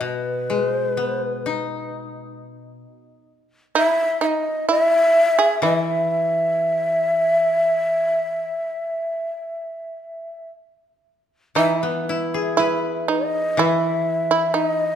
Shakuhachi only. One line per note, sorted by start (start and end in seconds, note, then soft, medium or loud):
0.05 0.70 B4 medium
0.70 0.87 C5 medium
0.87 1.07 B4 medium
1.07 1.24 C5 medium
1.24 1.89 B4 medium
3.77 4.20 E5 loud
4.22 4.28 E5 medium
4.27 4.66 D#5 medium
4.70 5.61 E5 loud
5.65 10.50 E5 loud
11.58 13.12 E5 medium
13.10 13.60 D#5 medium
13.59 14.58 E5 loud
14.56 14.95 D#5 loud